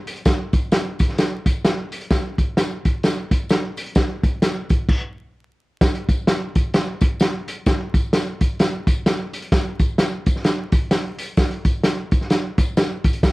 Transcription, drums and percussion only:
0.07 closed hi-hat, tambourine
0.16 closed hi-hat
0.25 kick, snare, closed hi-hat, tambourine
0.53 kick, closed hi-hat, tambourine
0.72 snare, closed hi-hat, tambourine
0.99 kick, closed hi-hat, tambourine
1.09 snare
1.18 snare, closed hi-hat, tambourine
1.46 kick, closed hi-hat, tambourine
1.65 snare, closed hi-hat, tambourine
1.92 closed hi-hat, tambourine
2.01 closed hi-hat
2.11 kick, snare, closed hi-hat, tambourine
2.38 kick, closed hi-hat, tambourine
2.57 snare, closed hi-hat, tambourine
2.85 kick, closed hi-hat, tambourine
3.03 snare, closed hi-hat, tambourine
3.31 kick, closed hi-hat, tambourine
3.49 snare, closed hi-hat, tambourine
3.77 closed hi-hat, tambourine
3.86 closed hi-hat
3.95 kick, snare, closed hi-hat, tambourine
4.23 kick, closed hi-hat, tambourine
4.42 snare, closed hi-hat, tambourine
4.69 kick, closed hi-hat, tambourine
4.89 kick, crash
5.81 kick, snare, closed hi-hat, tambourine
5.95 closed hi-hat
6.09 kick, closed hi-hat, tambourine
6.27 snare, closed hi-hat, tambourine
6.55 kick, closed hi-hat, tambourine
6.74 snare, closed hi-hat, tambourine
7.01 kick, closed hi-hat, tambourine
7.20 snare, closed hi-hat, tambourine
7.48 closed hi-hat, tambourine
7.66 kick, snare, closed hi-hat, tambourine
7.94 kick, closed hi-hat, tambourine
8.13 snare, closed hi-hat, tambourine
8.41 kick, closed hi-hat, tambourine
8.59 snare, closed hi-hat, tambourine
8.87 kick, closed hi-hat, tambourine
9.06 snare, closed hi-hat, tambourine
9.33 closed hi-hat, tambourine
9.42 closed hi-hat
9.52 kick, snare, closed hi-hat, tambourine
9.79 kick, closed hi-hat, tambourine
9.98 snare, closed hi-hat, tambourine
10.26 kick, closed hi-hat, tambourine
10.36 snare
10.44 snare, closed hi-hat, tambourine
10.72 kick, closed hi-hat, tambourine
10.91 snare, closed hi-hat, tambourine
11.19 closed hi-hat, tambourine
11.37 kick, snare, closed hi-hat, tambourine
11.51 closed hi-hat
11.65 kick, closed hi-hat, tambourine
11.83 snare, closed hi-hat, tambourine
12.11 kick, closed hi-hat, tambourine
12.21 snare
12.30 snare, closed hi-hat, tambourine
12.58 kick, closed hi-hat, tambourine
12.77 snare, closed hi-hat, tambourine
13.04 kick, closed hi-hat, tambourine
13.13 closed hi-hat
13.23 kick, snare, closed hi-hat, tambourine

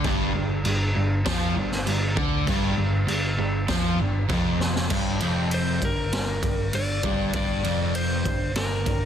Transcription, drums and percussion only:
0.04 kick, crash
0.65 crash
1.26 kick, snare, crash
1.72 snare
1.87 crash
2.17 kick
2.47 kick, crash
3.08 crash
3.68 kick, snare, crash
4.29 kick, crash
4.61 snare
4.76 snare
4.90 kick, crash
5.20 ride
5.51 ride
5.82 kick, ride
6.13 snare, ride
6.43 kick, ride
6.73 ride
7.03 kick, ride
7.33 kick, ride
7.64 ride
7.95 ride
8.25 kick, ride
8.56 snare, ride
8.86 kick, ride

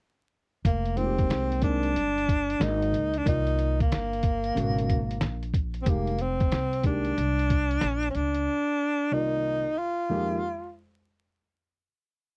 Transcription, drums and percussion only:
0.65 kick, closed hi-hat
0.86 closed hi-hat
0.97 closed hi-hat
1.18 kick, closed hi-hat
1.30 snare, closed hi-hat
1.52 closed hi-hat
1.62 kick, closed hi-hat
1.83 closed hi-hat
1.96 closed hi-hat
2.18 closed hi-hat
2.29 kick, closed hi-hat
2.50 closed hi-hat
2.61 snare, closed hi-hat
2.82 closed hi-hat
2.94 closed hi-hat
3.14 closed hi-hat
3.26 kick, closed hi-hat
3.47 closed hi-hat
3.59 closed hi-hat
3.80 kick, closed hi-hat
3.92 snare, closed hi-hat
4.13 closed hi-hat
4.23 kick, closed hi-hat
4.44 closed hi-hat
4.57 closed hi-hat
4.78 closed hi-hat
4.89 kick, closed hi-hat
5.11 closed hi-hat
5.21 snare, closed hi-hat
5.43 closed hi-hat
5.54 kick, closed hi-hat
5.74 closed hi-hat
5.86 kick, closed hi-hat
6.07 closed hi-hat
6.19 closed hi-hat
6.40 kick, closed hi-hat
6.52 snare, closed hi-hat
6.73 closed hi-hat
6.83 kick, closed hi-hat
7.05 closed hi-hat
7.18 closed hi-hat
7.39 closed hi-hat
7.50 kick, closed hi-hat
7.71 closed hi-hat
7.81 snare, closed hi-hat
8.03 closed hi-hat
8.15 closed hi-hat
8.34 closed hi-hat

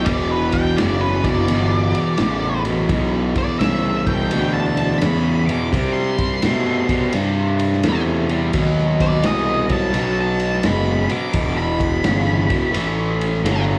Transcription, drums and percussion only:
0.06 kick, ride
0.52 kick, ride
0.78 snare, ride
1.24 kick, ride
1.48 ride
1.95 ride
2.17 snare, ride
2.65 ride
2.89 kick, ride
3.35 kick, ride
3.61 snare, ride
4.07 kick, ride
4.31 ride
4.77 ride
4.90 snare
5.01 snare, ride
5.49 ride
5.73 kick, ride
5.98 snare
6.18 kick, ride
6.42 snare, ride
6.89 kick, ride
7.12 ride
7.59 ride
7.72 snare
7.83 snare, ride
8.29 ride
8.53 kick, ride
8.78 snare
9.00 kick, ride
9.23 snare, ride
9.69 kick, ride
9.94 ride
10.40 ride
10.52 snare
10.63 snare, ride
11.09 ride
11.33 kick, ride
11.80 kick, ride
12.04 snare, ride
12.50 kick, ride
12.74 ride
13.21 ride
13.34 snare
13.46 snare, ride

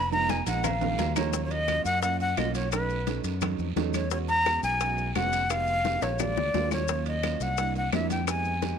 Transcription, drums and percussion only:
0.12 high conga, maracas
0.29 cowbell, high conga, low agogo, short guiro, maracas
0.46 cowbell, high conga, low agogo, short guiro, maracas
0.64 cowbell, high conga, low conga, high timbale, low agogo, long guiro, claves, maracas
0.81 high conga, low conga, high timbale, maracas
0.99 cowbell, high conga, low timbale, low agogo, short guiro, maracas
1.16 cowbell, high conga, low timbale, low agogo, short guiro, claves, maracas
1.33 high bongo, high conga, long guiro, maracas
1.51 high conga, high timbale, maracas
1.68 high bongo, high conga, high timbale, low timbale, short guiro, claves, maracas
1.86 high bongo, high conga, short guiro, maracas
2.03 high bongo, high conga, high timbale, long guiro, maracas
2.20 high bongo, high conga, maracas
2.37 high bongo, low bongo, high conga, high timbale, low timbale, short guiro, claves, maracas
2.55 high bongo, high timbale, short guiro, maracas
2.72 high bongo, high conga, high timbale, long guiro, claves, maracas
2.90 high conga, maracas
3.07 high bongo, high conga, high timbale, low timbale, short guiro, maracas
3.24 high bongo, high conga, high timbale, short guiro, maracas
3.41 high bongo, high conga, low conga, high timbale, long guiro, claves, maracas
3.59 high bongo, high conga, maracas
3.76 high bongo, low bongo, high conga, high timbale, low timbale, short guiro, maracas
3.94 high bongo, high conga, high timbale, short guiro, claves, maracas
4.11 high bongo, high conga, long guiro, maracas
4.29 high conga, high timbale, maracas
4.46 high bongo, high conga, high timbale, low timbale, short guiro, claves, maracas
4.63 high bongo, high conga, short guiro, maracas
4.80 high bongo, high conga, high timbale, long guiro, maracas
4.98 high bongo, high conga, maracas
5.15 high bongo, low bongo, high conga, high timbale, low timbale, short guiro, claves, maracas
5.33 high bongo, high timbale, short guiro, maracas
5.50 high bongo, high conga, high timbale, long guiro, claves, maracas
5.67 high conga, maracas
5.84 high bongo, high conga, high timbale, short guiro, maracas
6.02 high bongo, high conga, high timbale, short guiro, maracas
6.19 low bongo, high conga, low conga, low timbale, long guiro, claves, maracas
6.37 low bongo, high conga, low conga, maracas
6.54 low bongo, high conga, low timbale, short guiro, maracas
6.71 low bongo, high conga, low timbale, short guiro, claves, maracas
6.88 high bongo, long guiro, maracas
7.06 high conga, high timbale, maracas
7.23 high bongo, high conga, high timbale, low timbale, short guiro, claves, maracas
7.41 high bongo, high conga, short guiro, maracas
7.58 high bongo, high conga, high timbale, long guiro, maracas
7.76 high bongo, high conga, maracas
7.92 high bongo, low bongo, high conga, high timbale, low timbale, short guiro, claves, maracas
8.10 high bongo, high conga, high timbale, short guiro, maracas
8.27 high bongo, high timbale, long guiro, claves, maracas
8.45 high conga, maracas
8.62 high bongo, high conga, high timbale, low timbale, short guiro, maracas

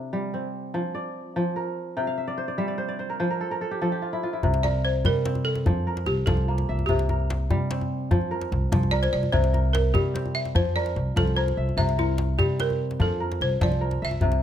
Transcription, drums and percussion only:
4.43 djembe bass
4.54 djembe slap
4.64 djembe tone
4.74 djembe slap
5.05 djembe tone, djembe bass
5.25 djembe slap
5.35 djembe tone
5.55 djembe slap
5.66 djembe slap, djembe tone, djembe bass
5.97 djembe slap
6.06 djembe tone
6.27 djembe slap, djembe bass
6.37 djembe slap, djembe tone
6.58 djembe slap
6.79 djembe tone
6.89 djembe bass
6.99 djembe slap
7.09 djembe tone
7.20 djembe slap
7.30 djembe slap
7.50 djembe tone, djembe bass
7.71 djembe slap
7.81 djembe tone
8.11 djembe slap, djembe tone, djembe bass
8.21 djembe slap
8.41 djembe slap
8.52 djembe tone
8.72 djembe slap, djembe bass
8.83 djembe slap, djembe tone
9.03 djembe slap
9.23 djembe tone
9.33 djembe bass
9.44 djembe slap
9.54 djembe tone
9.65 djembe slap
9.75 djembe slap
9.95 djembe tone, djembe bass
10.16 djembe slap
10.26 djembe tone
10.45 djembe slap
10.56 djembe slap, djembe tone, djembe bass
10.65 djembe slap
10.86 djembe slap
10.96 djembe tone
11.17 djembe slap, djembe bass
11.27 djembe slap, djembe tone
11.48 djembe slap
11.69 djembe tone
11.78 djembe bass
11.89 djembe slap
11.99 djembe slap, djembe tone
12.18 djembe slap
12.29 djembe slap
12.39 djembe tone, djembe bass
12.60 djembe slap
12.70 djembe slap, djembe tone
12.91 djembe slap
13.00 djembe tone, djembe bass
13.21 djembe slap
13.32 djembe slap
13.41 djembe slap, djembe tone
13.52 djembe slap
13.61 djembe slap, djembe bass
13.72 djembe slap, djembe tone
13.82 djembe slap
13.91 djembe slap
14.02 djembe slap
14.11 djembe tone
14.21 djembe bass
14.32 djembe slap

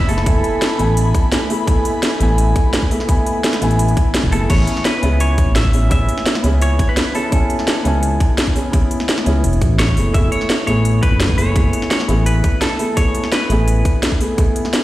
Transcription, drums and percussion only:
0.00 kick
0.09 open hi-hat
0.18 snare
0.26 kick, closed hi-hat
0.44 closed hi-hat
0.62 snare, closed hi-hat
0.79 closed hi-hat
0.97 closed hi-hat
1.15 kick, closed hi-hat
1.32 snare, closed hi-hat
1.50 open hi-hat
1.67 kick, closed hi-hat
1.85 closed hi-hat
2.03 snare, closed hi-hat
2.21 closed hi-hat
2.38 closed hi-hat
2.56 kick, closed hi-hat
2.73 snare, closed hi-hat
2.82 kick
2.91 open hi-hat
3.00 snare
3.09 kick, closed hi-hat
3.26 closed hi-hat
3.44 snare, closed hi-hat
3.53 snare, closed hi-hat
3.62 closed hi-hat
3.71 closed hi-hat
3.79 closed hi-hat
3.88 closed hi-hat
3.97 kick, closed hi-hat
4.14 snare, closed hi-hat
4.24 kick
4.32 open hi-hat
4.50 kick, closed hi-hat, crash
4.67 closed hi-hat
4.76 snare
4.85 snare, closed hi-hat
5.03 closed hi-hat
5.20 closed hi-hat
5.38 kick, closed hi-hat
5.56 snare, closed hi-hat
5.65 kick
5.73 open hi-hat
5.91 kick, closed hi-hat
6.09 closed hi-hat
6.18 snare
6.26 snare, closed hi-hat
6.35 snare
6.44 closed hi-hat
6.62 closed hi-hat
6.79 kick, closed hi-hat
6.97 snare, closed hi-hat
7.15 open hi-hat
7.32 kick, closed hi-hat
7.50 closed hi-hat
7.59 snare
7.68 snare, closed hi-hat
7.85 closed hi-hat
8.03 closed hi-hat
8.20 kick, closed hi-hat
8.38 snare, closed hi-hat
8.47 kick
8.56 open hi-hat
8.73 kick, closed hi-hat
8.91 closed hi-hat
9.00 snare
9.09 snare, closed hi-hat
9.18 snare
9.26 closed hi-hat
9.44 closed hi-hat
9.53 closed hi-hat
9.62 kick, closed hi-hat
9.79 snare, closed hi-hat
9.88 kick
9.97 open hi-hat
10.14 kick, closed hi-hat
10.32 closed hi-hat
10.41 snare
10.50 snare, closed hi-hat
10.67 closed hi-hat
10.85 closed hi-hat
11.03 kick, closed hi-hat
11.20 snare, closed hi-hat
11.29 kick
11.38 open hi-hat
11.56 kick, closed hi-hat
11.73 closed hi-hat
11.82 snare
11.91 snare, closed hi-hat
12.00 snare
12.09 closed hi-hat
12.26 closed hi-hat
12.44 kick, closed hi-hat
12.62 snare, closed hi-hat
12.79 open hi-hat
12.97 kick, closed hi-hat
13.15 closed hi-hat
13.24 snare
13.32 snare, closed hi-hat
13.50 closed hi-hat
13.68 closed hi-hat
13.85 kick, closed hi-hat
14.03 snare, closed hi-hat
14.12 kick
14.21 open hi-hat
14.38 kick, closed hi-hat
14.56 closed hi-hat
14.65 snare
14.73 snare, closed hi-hat

